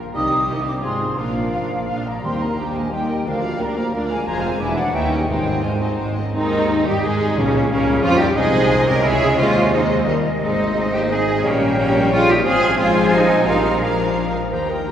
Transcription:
Already playing: D3 F3 A#3 D4 F4 A#4
0.14 C2 C3 D#3 G3 C4 D#4 G4 D#5 D#6
0.31 G3 D#4 C5
0.47 C2 C3 D#3 C4 G4 D#5
0.64 G3 D4 D#4 G4 C5 D6
0.81 G#1 G#2 F3 G#3 C4 F4 G#4 C6
0.99 C4 F4 G#4 C5
1.16 A#1 A#2 F3 D4 F4 A#4 F5
1.35 F3 A#3 D4 D5
1.53 A#1 A#2 D4 F4 F5
1.71 A#3 D4 F4 D5
1.87 A#1 A#2 D4 F4 D5 F5
2.06 A#3 D4 F4 D5 A#5
2.23 D#2 D#3 G3 C4 D#4 G4 A#4 G5 C6
2.41 A#3 D#4 A#4 D#5 A#5
2.58 D#2 F3 G3 A#3 D4 G4 G5
2.75 G#3 A#3 G4 A#4 D#5 G#5
2.92 D#2 D#3 G3 D#4 G4 D#5 G5
3.10 D#3 A#3 A#4 D#5
3.26 D2 D3 F3 D4 A#4 D5 F5
3.43 G3 A#3 D4 D5 F5
3.60 D2 G3 A#3 D4 G4 A#4 D5 A#5
3.77 F3 A#3 A#4 D5 F5
3.93 D2 A#3 D4 F4 A#4 D5 F5
4.10 G#3 A#3 A#4 D5 F5 G#5
4.26 F1 F2 F3 G#3 A#3 F4 G#4 C5 G#5 A#5
4.42 G#3 C4 F4 G#4 F5 G#5
4.59 E1 E2 E3 D4 E4 D5 E5
4.76 F#3 D4 E4 G#4 D5 F#5
4.93 D#2 D#3 E3 G3 D#4 E4 C#5 E5 G5
5.12 C#4 D#4 E4 D#5
5.28 G#1 G#2 D#3 G3 G#3 D#4 C5 G5
5.46 D#3 C4 G#4 D#5
5.63 G#1 G#2 D#3 G#3 D#4 F4 C5 G#5
5.81 C4 D#4 D#5
5.97 G#1 G#2 G#3 C5 D#5
6.17 C4 C#4 D#4 D#5
6.34 D#2 G#2 D#3 G#3 C4 D#4
6.44 D#3
6.53 G#3
6.62 D#4
6.70 C5
6.79 G#4
6.86 G2 G3 A#3 D#4 G4 D#5
6.96 C6
7.04 G#2 G#3 C4 D#4 G#4
7.13 G#4
7.30 D#4
7.37 C#2 A#2 C#3 G3 A#3 C#4
7.47 A#3
7.55 G3
7.69 C#2 C#3 G3 A#3 C#4 C#5
7.79 G4
7.87 G5
7.96 C#6
8.03 F2 F3 G#3 C#4 F4 G5
8.12 G4
8.19 G2 G3 A#3 D#4 G4 C#5
8.28 G4
8.36 C2 C3 G#3 C4 D#4 G#4 C5 D#5 G#5
8.46 C4
8.54 G#3
8.62 D#4
8.79 G#4
8.87 C#4 G4 A#4 D#5
8.96 D#6
9.03 C#2 C#3 G#3 C#4 E4 G#4 C#5 E5
9.13 C#4
9.21 G#3
9.30 E4
9.37 D#2 D#3 G#3 C#4 F4 C5 D#5
9.47 G#3
9.56 D#4
9.73 G#3 C4 D#4 G#4 C5 D#5
9.90 C6
9.99 G#5
10.07 D#2 D#3 G3 A#4 D#5
10.16 G3
10.34 A#4
10.42 G#1 G#2 G#3 C4 D#4 C5 D#5
10.51 D#3
10.59 G#3
10.68 D#4
10.76 C5
10.85 G#4
10.93 A#3 D#4 G4 D#5
11.02 C6
11.10 C4 D#4 G#4 D#5
11.18 G#4
11.35 D#4
11.43 A#1 A#2 G3 A#3 C#4 C#5 G5
11.52 A#3
11.61 G3
11.78 G3 A#3 C#4 C#5
11.86 G4
11.94 G5
12.03 C#6
12.12 G#3 C#4 F4
12.20 G4
12.29 A#3 D#4 G4
12.36 G4
12.44 G#1 G#2 F3 C4 F4 G#4 C5 G#5
12.53 F3
12.61 G#3
12.70 F4
12.77 F3 G#3 C4 F4 C5 G#5
12.87 G#4
13.12 G3 C4 D#4
13.21 G#4
13.39 F4
13.46 A#1 A#2 F3 G3 C4 D#4 A#4 F5 A#5
13.56 A#3
13.65 F3
13.81 F3 A#3 D4 A#4 F5
13.91 F4
14.08 A#5
14.17 F5
14.26 F4
14.35 A#4
14.43 F4
14.51 D#2 D#3 G3 A#3 G4 C5 G5 A#5
14.69 G3 D#4 A#4 G5 A#5
14.86 D#2 D#4 G4 G5 A#5

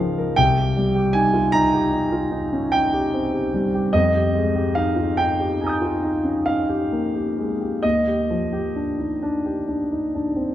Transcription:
Already playing: C#2 F3 G#3 C#4 D#4 F4 A#4 F5
0.18 A#4
0.36 C2 G5
0.58 G4
0.77 G3
0.95 G4
1.13 D#4 G#5
1.34 F4
1.52 D#4 A#5
1.73 G4
1.92 D#4
2.12 F4
2.31 D#4
2.53 C#4
2.72 D#4 G5
2.93 G4
3.14 C4
3.34 G4
3.54 G3
3.74 G4
3.93 F2 D#5
4.15 G4
4.35 G#3
4.56 G4
4.75 D#4 F5
4.96 F4
5.17 D#4 G5
5.39 G4
5.60 D#4 G#5 A#5
5.67 D#6 G6
5.81 F4
6.03 D#4
6.24 C#4
6.46 D#4 F5
6.69 G4
6.92 A#3
7.15 G4
7.38 G#3
7.60 G4
7.83 D#2 D#5
8.07 G4
8.30 F3
8.53 G4
8.76 D4
8.99 D#4
9.23 D4
9.45 G4
9.68 D4
9.91 D#4
10.15 D4
10.36 C4

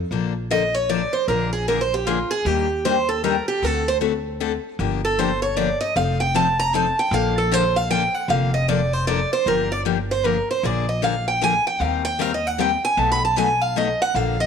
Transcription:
0.11 A#1 D3 F3 A#3 D4 A4
0.51 D3 F3 A#3 D4 A4 D#5
0.75 C#5
0.89 D3 F3 A#3 D4 A4 D5
1.13 C5
1.28 A#1 D3 F3 A#3 D4 G#4 A#4
1.53 G#4
1.68 D3 F3 A#3 D4 G#4 A#4
1.81 C5
1.94 G4
2.07 D3 F3 A#3 D4 F4 G#4
2.31 G#4
2.45 D#2 D#3 G3 A#3 D4 G4
2.85 D#3 G3 A#3 D4 G4 C5
3.09 A4
3.24 D#3 G3 A#3 D4 G4 A#4
3.48 G4
3.62 D2 D3 A3 C4 F#4 A4
3.88 C5
4.01 D3 A3 C4 F#4 A4
4.40 D3 A3 C4 F#4 A4
4.79 G1 D3 F3 A#3 D4 G4
5.05 A4
5.19 D3 F3 A#3 D4 G4 C5
5.42 C#5
5.56 D3 F3 A#3 D4 G4 D5
5.81 D#5
5.96 F1 F3 C4 D#4 A4 F5
6.20 G5
6.34 F3 C4 D#4 A4 A5
6.59 A#5
6.73 F3 C4 D#4 A4 A5
6.99 G5
7.11 A#1 D3 F3 A#3 D4 A4 F5
7.38 A4
7.52 D3 F3 A#3 D4 A4 C5
7.76 F5
7.90 D3 F3 A#3 D4 A4 G5
8.14 F#5
8.28 F1 D3 F3 A#3 D4 A4 F5
8.54 D#5
8.68 D3 F3 A#3 D4 A4 D5
8.93 C5
9.07 D3 F3 A#3 D4 A4 D5
9.33 C5
9.46 G1 D3 F3 A#3 D4 G4 A#4
9.72 D5
9.85 D3 F3 A#3 D4 G4
10.11 C5
10.24 D3 F3 A#3 D4 G4 A#4
10.51 C5
10.63 A#1 D3 F3 A#3 D4 G#4 D5
10.89 D#5
11.02 D3 F3 A#3 D4 G#4 F5
11.28 G5
11.41 D3 F3 A#3 D4 G#4 G#5
11.67 G5
11.80 D#2 D#3 G3 C4 G4 A#4 F5
12.05 G5
12.19 D#3 G3 C4 G4 A#4 F5
12.34 D#5
12.47 F#5
12.58 D#3 G3 C4 G4 A#4 G5
12.85 G#5
12.97 B1 B2 F#3 A3 D#4 F#4 A5
13.12 B5
13.25 A5
13.36 B2 F#3 A3 D#4 F#4 G#5
13.61 F5
13.76 B2 F#3 A3 D#4 F#4 D#5
14.02 F#5
14.14 A#1 D3 F3 A#3 D4 A4 F5
14.40 D#5

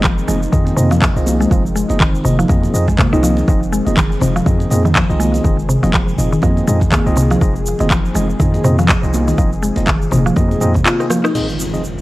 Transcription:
Already playing: F1 D#3 F3 G#3 C4 D#4
0.03 F3, kick, clap, low conga, shaker
0.18 shaker
0.28 F1 G#3 C4 D#4 F4 G#4 D#5, muted conga, high conga, low conga, shaker
0.43 shaker
0.52 F2 D#3 C4 D#4 F4 G#4 D#5, kick, shaker
0.67 muted conga, shaker
0.77 F2 C3 C4 D#4 F4 G#4 D#5, high conga, shaker
0.91 F3, low conga, shaker
1.01 F3, kick, clap, muted conga, shaker
1.16 C2 C4 D#4 F4 G#4 D#5, shaker
1.27 high conga, shaker
1.40 G#3, muted conga, shaker
1.51 F1 F3 C4 D#4 F4 G#4 D#5, kick, shaker
1.66 shaker
1.76 G#3, shaker
1.89 F1 C4 D#4 F4 G#4 D#5, muted conga, high conga, shaker
2.00 D#3, kick, clap, low conga, shaker
2.15 shaker
2.24 F1 C3 C4 D#4 F4 G#4 D#5, high conga, shaker
2.39 F3, shaker
2.48 F2 F3 C4 D#4 F4 G#4 D#5, kick, high conga, low conga, shaker
2.63 muted conga, shaker
2.74 F2 C4 D#4 F4 G#4 D#5, shaker
2.88 G#3, kick, low conga, shaker
2.98 C3, kick, clap, muted conga, high conga, shaker
3.13 C2 C4 D#4 F4 G#4 D#5, shaker
3.23 F3, high conga, shaker
3.37 muted conga, shaker
3.48 F1 F3 C4 D#4 F4 G#4 D#5, kick, shaker
3.63 shaker
3.72 G#3, shaker
3.86 F1 C4 D#4 F4 G#4 D#5, muted conga, high conga, shaker
3.97 D#3, kick, clap, low conga, shaker
4.12 shaker
4.21 F1 C3 C4 D#4 F4 G#4 D#5, muted conga, high conga, low conga, shaker
4.36 F3, shaker
4.46 F2 F3 C4 D#4 F4 G#4 D#5, kick, mid tom, shaker
4.60 muted conga, shaker
4.70 F2 C4 D#4 F4 G#4 D#5, mid tom, high conga, shaker
4.85 D#3, low conga, shaker
4.95 F3, kick, clap, muted conga, shaker
5.09 C2 C4 D#4 F4 G#4 D#5, shaker
5.20 G#3, high conga, shaker
5.34 muted conga, shaker
5.44 F1 D#3 C4 D#4 F4 G#4 D#5, kick, shaker
5.59 shaker
5.69 C3, shaker
5.83 F1 F3 C4 D#4 F4 G#4 D#5, muted conga, high conga, shaker
5.94 F3, kick, clap, low conga, shaker
6.08 shaker
6.18 F1 C4 D#4 F4 G#4 D#5, mid tom, shaker
6.32 D#3, shaker
6.42 F2 F3 C4 D#4 F4 G#4 D#5, kick, high conga, low conga, shaker
6.57 muted conga, shaker
6.67 F2 G#3 C4 D#4 F4 G#4 D#5, mid tom, shaker
6.81 kick, low conga, shaker
6.92 D#3, kick, clap, muted conga, high conga, shaker
7.06 C2 C4 D#4 F4 G#4 D#5, shaker
7.16 C3, high conga, shaker
7.30 F3, muted conga, shaker
7.41 F1 F3 C4 D#4 F4 G#4 D#5, kick, shaker
7.56 shaker
7.66 shaker
7.79 F1 D#3 C4 D#4 F4 G#4 D#5, muted conga, high conga, shaker
7.90 F3, kick, clap, low conga, shaker
8.05 shaker
8.14 F1 G#3 C4 D#4 F4 G#4 D#5, muted conga, high conga, low conga, shaker
8.30 shaker
8.40 F2 D#3 C4 D#4 F4 G#4 D#5, kick, mid tom, shaker
8.54 muted conga, shaker
8.64 F2 C3 C4 D#4 F4 G#4 D#5, mid tom, high conga, shaker
8.79 F3, low conga, shaker
8.88 F3, kick, clap, muted conga, shaker
9.03 C2 C4 D#4 F4 G#4 D#5, shaker
9.14 high conga, shaker
9.28 D#3, muted conga, shaker
9.38 F1 F3 C4 D#4 F4 G#4 D#5, kick, shaker
9.52 shaker
9.62 G#3, shaker
9.76 F1 C4 D#4 F4 G#4 D#5, muted conga, high conga, shaker
9.86 D#3, kick, clap, low conga, shaker
10.02 shaker
10.11 F1 C3 C4 D#4 F4 G#4 D#5, mid tom, high conga, low conga, shaker
10.26 F3, shaker
10.36 F2 F3 C4 D#4 F4 G#4 D#5, kick, high conga, low conga, shaker
10.51 muted conga, shaker
10.60 F2 C4 D#4 F4 G#4 D#5, mid tom, high conga, shaker
10.74 C3, kick, low conga, shaker
10.85 F4, clap, muted conga, high conga, shaker
11.00 C4 D#4 F4 G#4 D#5, cross-stick, shaker
11.10 F3, cross-stick, high conga, shaker
11.24 D#4, cross-stick, muted conga, shaker
11.35 D#3 F3 G#3 C4 D#4 F4 G#4 D#5, mid tom, crash, impact, shaker
11.49 shaker
11.60 shaker
11.74 C4 D#4 F4 G#4 D#5, shaker
11.84 shaker

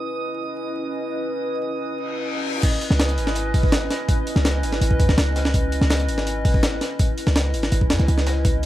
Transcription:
Already playing: C#4 E4 B4 D#5 D#6
1.90 reverse cymbal
2.63 C#4 E4 B4 D#5, kick, closed hi-hat, open hi-hat, crash
2.81 closed hi-hat, open hi-hat
2.90 C#2, snare
2.99 snare, closed hi-hat, open hi-hat
3.09 snare, closed hi-hat
3.18 G#1, closed hi-hat, open hi-hat
3.27 snare, closed hi-hat
3.35 closed hi-hat, open hi-hat
3.54 kick, open hi-hat
3.63 kick
3.72 snare, closed hi-hat, open hi-hat
3.90 snare, closed hi-hat, open hi-hat
4.09 C#4 E4 B4 D#5, kick, closed hi-hat, open hi-hat
4.27 closed hi-hat, open hi-hat
4.36 C#2, snare, closed hi-hat
4.45 snare, closed hi-hat, open hi-hat
4.63 G#1, closed hi-hat, open hi-hat
4.72 snare, closed hi-hat
4.81 G#1, closed hi-hat, open hi-hat
4.91 kick
5.00 F#2, kick, closed hi-hat, open hi-hat
5.09 C#2, snare
5.18 C#2, snare, closed hi-hat, open hi-hat
5.36 snare, closed hi-hat, open hi-hat
5.45 snare
5.54 C#4 E4 B4 D#5, kick, closed hi-hat, open hi-hat
5.72 closed hi-hat, open hi-hat
5.81 C#2, snare
5.90 snare, closed hi-hat, open hi-hat
6.00 snare, closed hi-hat
6.09 G#1, closed hi-hat, open hi-hat
6.18 snare, closed hi-hat
6.27 closed hi-hat, open hi-hat
6.45 kick, open hi-hat
6.54 kick
6.63 snare, closed hi-hat, open hi-hat
6.81 snare, closed hi-hat, open hi-hat
6.99 kick, closed hi-hat, open hi-hat
7.18 closed hi-hat, open hi-hat
7.27 C#2, snare, closed hi-hat
7.36 snare, closed hi-hat, open hi-hat
7.54 G#1, closed hi-hat, open hi-hat
7.62 snare, closed hi-hat
7.72 G#1, closed hi-hat, open hi-hat
7.81 kick
7.90 F#2, snare, closed hi-hat, open hi-hat
7.99 C#2, snare, closed hi-hat
8.08 C#2, open hi-hat
8.18 snare
8.27 snare, closed hi-hat, open hi-hat
8.45 C#4 E4 B4 D#5, kick, closed hi-hat, open hi-hat

